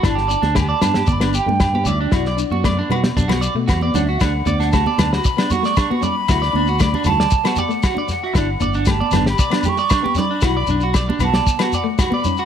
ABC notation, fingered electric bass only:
X:1
M:4/4
L:1/16
Q:1/4=116
K:D
V:1 name="Fingered electric bass" clef=bass
G,,,3 D,,3 G,,2 G,,,3 G,,3 D,,2 | B,,,3 F,,3 B,,2 B,,,3 B,, E,,2 D,,2 | D,,2 D,,4 D,,2 z8 | D,,2 D,,4 D,,2 z8 |
G,,,2 G,,,4 G,,,2 z8 | B,,,2 B,,,4 B,,,2 z8 |]